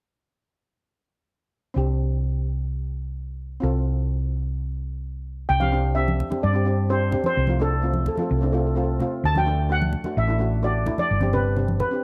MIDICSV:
0, 0, Header, 1, 5, 480
1, 0, Start_track
1, 0, Key_signature, 0, "major"
1, 0, Tempo, 467290
1, 1805, Time_signature, 4, 2, 24, 8
1, 12366, End_track
2, 0, Start_track
2, 0, Title_t, "Steel pan"
2, 0, Program_c, 0, 114
2, 5638, Note_on_c, 0, 79, 90
2, 5753, Note_on_c, 0, 77, 88
2, 5768, Note_off_c, 0, 79, 0
2, 6110, Note_on_c, 0, 76, 81
2, 6131, Note_off_c, 0, 77, 0
2, 6607, Note_on_c, 0, 74, 78
2, 6614, Note_off_c, 0, 76, 0
2, 7054, Note_off_c, 0, 74, 0
2, 7088, Note_on_c, 0, 72, 76
2, 7424, Note_off_c, 0, 72, 0
2, 7459, Note_on_c, 0, 72, 82
2, 7788, Note_off_c, 0, 72, 0
2, 7824, Note_on_c, 0, 69, 81
2, 8289, Note_off_c, 0, 69, 0
2, 8301, Note_on_c, 0, 69, 68
2, 8364, Note_off_c, 0, 69, 0
2, 8376, Note_on_c, 0, 69, 48
2, 8433, Note_off_c, 0, 69, 0
2, 8445, Note_on_c, 0, 69, 51
2, 8512, Note_off_c, 0, 69, 0
2, 8525, Note_on_c, 0, 69, 39
2, 8591, Note_off_c, 0, 69, 0
2, 8604, Note_on_c, 0, 69, 41
2, 8669, Note_off_c, 0, 69, 0
2, 8681, Note_on_c, 0, 69, 41
2, 8740, Note_off_c, 0, 69, 0
2, 8753, Note_on_c, 0, 69, 46
2, 8816, Note_off_c, 0, 69, 0
2, 8828, Note_on_c, 0, 69, 39
2, 8891, Note_off_c, 0, 69, 0
2, 8903, Note_on_c, 0, 69, 45
2, 8976, Note_off_c, 0, 69, 0
2, 8989, Note_on_c, 0, 69, 38
2, 9058, Note_off_c, 0, 69, 0
2, 9077, Note_on_c, 0, 69, 47
2, 9142, Note_off_c, 0, 69, 0
2, 9506, Note_on_c, 0, 81, 90
2, 9556, Note_off_c, 0, 81, 0
2, 9632, Note_on_c, 0, 79, 82
2, 9984, Note_on_c, 0, 78, 90
2, 9988, Note_off_c, 0, 79, 0
2, 10455, Note_on_c, 0, 76, 77
2, 10467, Note_off_c, 0, 78, 0
2, 10931, Note_on_c, 0, 74, 74
2, 10942, Note_off_c, 0, 76, 0
2, 11279, Note_off_c, 0, 74, 0
2, 11292, Note_on_c, 0, 74, 82
2, 11645, Note_on_c, 0, 71, 70
2, 11656, Note_off_c, 0, 74, 0
2, 12112, Note_off_c, 0, 71, 0
2, 12124, Note_on_c, 0, 71, 71
2, 12366, Note_off_c, 0, 71, 0
2, 12366, End_track
3, 0, Start_track
3, 0, Title_t, "Steel pan"
3, 0, Program_c, 1, 114
3, 1789, Note_on_c, 1, 60, 59
3, 1803, Note_on_c, 1, 62, 48
3, 1823, Note_on_c, 1, 67, 66
3, 3681, Note_off_c, 1, 60, 0
3, 3688, Note_off_c, 1, 62, 0
3, 3698, Note_off_c, 1, 67, 0
3, 3700, Note_on_c, 1, 60, 60
3, 3718, Note_on_c, 1, 65, 54
3, 3736, Note_on_c, 1, 69, 69
3, 5596, Note_off_c, 1, 60, 0
3, 5605, Note_off_c, 1, 65, 0
3, 5614, Note_off_c, 1, 69, 0
3, 5755, Note_on_c, 1, 60, 62
3, 5759, Note_on_c, 1, 62, 57
3, 5773, Note_on_c, 1, 67, 69
3, 5834, Note_off_c, 1, 60, 0
3, 5836, Note_off_c, 1, 62, 0
3, 5843, Note_off_c, 1, 67, 0
3, 5875, Note_on_c, 1, 60, 70
3, 5886, Note_on_c, 1, 62, 62
3, 5893, Note_on_c, 1, 67, 73
3, 6027, Note_off_c, 1, 60, 0
3, 6032, Note_off_c, 1, 62, 0
3, 6036, Note_off_c, 1, 67, 0
3, 6113, Note_on_c, 1, 60, 57
3, 6124, Note_on_c, 1, 62, 57
3, 6140, Note_on_c, 1, 67, 66
3, 6337, Note_off_c, 1, 60, 0
3, 6343, Note_off_c, 1, 62, 0
3, 6351, Note_off_c, 1, 67, 0
3, 6472, Note_on_c, 1, 60, 58
3, 6483, Note_on_c, 1, 62, 55
3, 6491, Note_on_c, 1, 67, 58
3, 6624, Note_off_c, 1, 60, 0
3, 6629, Note_off_c, 1, 62, 0
3, 6633, Note_off_c, 1, 67, 0
3, 6708, Note_on_c, 1, 60, 62
3, 6724, Note_on_c, 1, 62, 60
3, 6735, Note_on_c, 1, 67, 66
3, 6790, Note_off_c, 1, 60, 0
3, 6798, Note_off_c, 1, 62, 0
3, 6803, Note_off_c, 1, 67, 0
3, 6833, Note_on_c, 1, 60, 65
3, 6843, Note_on_c, 1, 62, 51
3, 6852, Note_on_c, 1, 67, 66
3, 6985, Note_off_c, 1, 60, 0
3, 6991, Note_off_c, 1, 62, 0
3, 6995, Note_off_c, 1, 67, 0
3, 7082, Note_on_c, 1, 60, 66
3, 7094, Note_on_c, 1, 62, 60
3, 7106, Note_on_c, 1, 67, 68
3, 7230, Note_off_c, 1, 60, 0
3, 7236, Note_off_c, 1, 62, 0
3, 7242, Note_off_c, 1, 67, 0
3, 7308, Note_on_c, 1, 60, 64
3, 7324, Note_on_c, 1, 62, 60
3, 7337, Note_on_c, 1, 67, 69
3, 7534, Note_off_c, 1, 60, 0
3, 7542, Note_off_c, 1, 62, 0
3, 7548, Note_off_c, 1, 67, 0
3, 7683, Note_on_c, 1, 57, 61
3, 7689, Note_on_c, 1, 60, 55
3, 7701, Note_on_c, 1, 65, 69
3, 7757, Note_off_c, 1, 57, 0
3, 7760, Note_off_c, 1, 60, 0
3, 7766, Note_off_c, 1, 65, 0
3, 7801, Note_on_c, 1, 57, 67
3, 7810, Note_on_c, 1, 60, 63
3, 7819, Note_on_c, 1, 62, 73
3, 7949, Note_off_c, 1, 57, 0
3, 7954, Note_off_c, 1, 60, 0
3, 7958, Note_off_c, 1, 62, 0
3, 8035, Note_on_c, 1, 57, 63
3, 8043, Note_on_c, 1, 60, 58
3, 8052, Note_on_c, 1, 65, 58
3, 8257, Note_off_c, 1, 57, 0
3, 8261, Note_off_c, 1, 60, 0
3, 8266, Note_off_c, 1, 65, 0
3, 8394, Note_on_c, 1, 57, 57
3, 8406, Note_on_c, 1, 60, 51
3, 8414, Note_on_c, 1, 65, 65
3, 8544, Note_off_c, 1, 57, 0
3, 8550, Note_off_c, 1, 60, 0
3, 8554, Note_off_c, 1, 65, 0
3, 8638, Note_on_c, 1, 57, 63
3, 8648, Note_on_c, 1, 60, 55
3, 8660, Note_on_c, 1, 62, 71
3, 8714, Note_off_c, 1, 57, 0
3, 8719, Note_off_c, 1, 60, 0
3, 8725, Note_off_c, 1, 62, 0
3, 8760, Note_on_c, 1, 57, 60
3, 8770, Note_on_c, 1, 60, 54
3, 8775, Note_on_c, 1, 65, 69
3, 8908, Note_off_c, 1, 57, 0
3, 8913, Note_off_c, 1, 60, 0
3, 8916, Note_off_c, 1, 65, 0
3, 8991, Note_on_c, 1, 57, 59
3, 9003, Note_on_c, 1, 60, 63
3, 9009, Note_on_c, 1, 65, 70
3, 9143, Note_off_c, 1, 57, 0
3, 9149, Note_off_c, 1, 60, 0
3, 9152, Note_off_c, 1, 65, 0
3, 9239, Note_on_c, 1, 57, 65
3, 9255, Note_on_c, 1, 60, 65
3, 9263, Note_on_c, 1, 65, 76
3, 9458, Note_off_c, 1, 57, 0
3, 9466, Note_off_c, 1, 60, 0
3, 9470, Note_off_c, 1, 65, 0
3, 9602, Note_on_c, 1, 57, 68
3, 9612, Note_on_c, 1, 62, 62
3, 9626, Note_on_c, 1, 66, 73
3, 9675, Note_off_c, 1, 57, 0
3, 9680, Note_off_c, 1, 62, 0
3, 9687, Note_off_c, 1, 66, 0
3, 9713, Note_on_c, 1, 57, 71
3, 9723, Note_on_c, 1, 62, 66
3, 9733, Note_on_c, 1, 69, 77
3, 9863, Note_off_c, 1, 57, 0
3, 9869, Note_off_c, 1, 62, 0
3, 9874, Note_off_c, 1, 69, 0
3, 9953, Note_on_c, 1, 57, 59
3, 9962, Note_on_c, 1, 62, 55
3, 9973, Note_on_c, 1, 66, 59
3, 10174, Note_off_c, 1, 57, 0
3, 10179, Note_off_c, 1, 62, 0
3, 10185, Note_off_c, 1, 66, 0
3, 10314, Note_on_c, 1, 57, 58
3, 10328, Note_on_c, 1, 62, 49
3, 10335, Note_on_c, 1, 66, 69
3, 10462, Note_off_c, 1, 57, 0
3, 10469, Note_off_c, 1, 62, 0
3, 10473, Note_off_c, 1, 66, 0
3, 10552, Note_on_c, 1, 57, 64
3, 10563, Note_on_c, 1, 62, 58
3, 10579, Note_on_c, 1, 64, 68
3, 10629, Note_off_c, 1, 57, 0
3, 10635, Note_off_c, 1, 62, 0
3, 10643, Note_off_c, 1, 64, 0
3, 10668, Note_on_c, 1, 57, 63
3, 10682, Note_on_c, 1, 62, 58
3, 10694, Note_on_c, 1, 66, 68
3, 10820, Note_off_c, 1, 57, 0
3, 10827, Note_off_c, 1, 62, 0
3, 10833, Note_off_c, 1, 66, 0
3, 10916, Note_on_c, 1, 57, 66
3, 10917, Note_on_c, 1, 62, 63
3, 10933, Note_on_c, 1, 66, 72
3, 11064, Note_off_c, 1, 57, 0
3, 11064, Note_off_c, 1, 62, 0
3, 11072, Note_off_c, 1, 66, 0
3, 11152, Note_on_c, 1, 57, 61
3, 11157, Note_on_c, 1, 62, 61
3, 11169, Note_on_c, 1, 64, 76
3, 11373, Note_off_c, 1, 57, 0
3, 11375, Note_off_c, 1, 62, 0
3, 11381, Note_off_c, 1, 64, 0
3, 11507, Note_on_c, 1, 60, 68
3, 11522, Note_on_c, 1, 62, 62
3, 11535, Note_on_c, 1, 67, 69
3, 11586, Note_off_c, 1, 60, 0
3, 11593, Note_off_c, 1, 62, 0
3, 11599, Note_off_c, 1, 67, 0
3, 11638, Note_on_c, 1, 60, 71
3, 11647, Note_on_c, 1, 62, 59
3, 11658, Note_on_c, 1, 67, 74
3, 11784, Note_off_c, 1, 60, 0
3, 11788, Note_off_c, 1, 62, 0
3, 11794, Note_off_c, 1, 67, 0
3, 11877, Note_on_c, 1, 60, 57
3, 11886, Note_on_c, 1, 62, 54
3, 11897, Note_on_c, 1, 67, 58
3, 12094, Note_off_c, 1, 60, 0
3, 12099, Note_off_c, 1, 62, 0
3, 12105, Note_off_c, 1, 67, 0
3, 12235, Note_on_c, 1, 60, 62
3, 12249, Note_on_c, 1, 62, 52
3, 12259, Note_on_c, 1, 67, 58
3, 12356, Note_off_c, 1, 60, 0
3, 12363, Note_off_c, 1, 62, 0
3, 12366, Note_off_c, 1, 67, 0
3, 12366, End_track
4, 0, Start_track
4, 0, Title_t, "Fingered electric bass"
4, 0, Program_c, 2, 33
4, 1810, Note_on_c, 2, 36, 61
4, 3692, Note_off_c, 2, 36, 0
4, 3731, Note_on_c, 2, 36, 65
4, 5612, Note_off_c, 2, 36, 0
4, 5646, Note_on_c, 2, 36, 84
4, 6369, Note_off_c, 2, 36, 0
4, 6611, Note_on_c, 2, 43, 72
4, 7332, Note_off_c, 2, 43, 0
4, 7572, Note_on_c, 2, 36, 86
4, 8292, Note_off_c, 2, 36, 0
4, 8533, Note_on_c, 2, 36, 75
4, 9252, Note_off_c, 2, 36, 0
4, 9488, Note_on_c, 2, 38, 79
4, 10208, Note_off_c, 2, 38, 0
4, 10445, Note_on_c, 2, 33, 82
4, 11165, Note_off_c, 2, 33, 0
4, 11410, Note_on_c, 2, 31, 78
4, 12127, Note_off_c, 2, 31, 0
4, 12366, End_track
5, 0, Start_track
5, 0, Title_t, "Drums"
5, 5761, Note_on_c, 9, 63, 57
5, 5864, Note_off_c, 9, 63, 0
5, 6245, Note_on_c, 9, 63, 62
5, 6348, Note_off_c, 9, 63, 0
5, 6370, Note_on_c, 9, 64, 61
5, 6472, Note_off_c, 9, 64, 0
5, 6489, Note_on_c, 9, 63, 60
5, 6591, Note_off_c, 9, 63, 0
5, 7317, Note_on_c, 9, 64, 65
5, 7420, Note_off_c, 9, 64, 0
5, 7434, Note_on_c, 9, 63, 57
5, 7537, Note_off_c, 9, 63, 0
5, 7675, Note_on_c, 9, 63, 59
5, 7777, Note_off_c, 9, 63, 0
5, 8152, Note_on_c, 9, 63, 56
5, 8254, Note_off_c, 9, 63, 0
5, 8280, Note_on_c, 9, 64, 62
5, 8383, Note_off_c, 9, 64, 0
5, 8398, Note_on_c, 9, 63, 58
5, 8500, Note_off_c, 9, 63, 0
5, 9247, Note_on_c, 9, 64, 59
5, 9350, Note_off_c, 9, 64, 0
5, 9608, Note_on_c, 9, 63, 60
5, 9711, Note_off_c, 9, 63, 0
5, 10084, Note_on_c, 9, 63, 60
5, 10187, Note_off_c, 9, 63, 0
5, 10197, Note_on_c, 9, 64, 61
5, 10299, Note_off_c, 9, 64, 0
5, 10314, Note_on_c, 9, 63, 52
5, 10417, Note_off_c, 9, 63, 0
5, 11160, Note_on_c, 9, 64, 61
5, 11263, Note_off_c, 9, 64, 0
5, 11280, Note_on_c, 9, 63, 56
5, 11383, Note_off_c, 9, 63, 0
5, 11513, Note_on_c, 9, 63, 54
5, 11616, Note_off_c, 9, 63, 0
5, 11640, Note_on_c, 9, 64, 57
5, 11743, Note_off_c, 9, 64, 0
5, 11880, Note_on_c, 9, 64, 50
5, 11983, Note_off_c, 9, 64, 0
5, 11999, Note_on_c, 9, 63, 56
5, 12102, Note_off_c, 9, 63, 0
5, 12119, Note_on_c, 9, 64, 59
5, 12221, Note_off_c, 9, 64, 0
5, 12366, End_track
0, 0, End_of_file